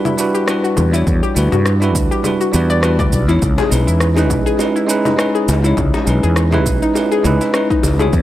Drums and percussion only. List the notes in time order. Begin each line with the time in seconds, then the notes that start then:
0.05 low conga, shaker
0.18 shaker
0.35 shaker
0.48 cross-stick, shaker
0.65 shaker
0.77 low conga, shaker
0.94 shaker
1.07 kick, shaker
1.23 shaker
1.36 shaker
1.52 low conga, shaker
1.66 cross-stick, shaker
1.82 shaker
1.95 kick, shaker
2.12 shaker
2.24 low conga, shaker
2.41 shaker
2.54 shaker
2.70 shaker
2.83 cross-stick, shaker
2.99 kick, low conga, shaker
3.13 kick, shaker
3.29 shaker
3.42 kick, shaker
3.58 high bongo, low conga, shaker
3.72 shaker
3.88 shaker
4.00 cross-stick, shaker
4.16 high bongo, shaker
4.30 kick, low conga, shaker
4.47 shaker
4.59 high bongo, shaker
4.76 shaker
4.89 shaker
5.05 high bongo, low conga, shaker
5.19 cross-stick, shaker
5.35 shaker
5.48 high bongo, shaker
5.64 shaker
5.77 kick, low conga, shaker
5.94 high bongo, shaker
6.07 shaker
6.23 shaker
6.36 cross-stick, shaker
6.52 high bongo, low conga, shaker
6.66 kick, shaker
6.82 shaker
6.95 high bongo, shaker
7.12 shaker
7.24 low conga, shaker
7.41 high bongo, shaker
7.54 cross-stick, shaker
7.70 kick, shaker
7.83 high bongo, shaker
7.99 low conga, shaker
8.13 kick, shaker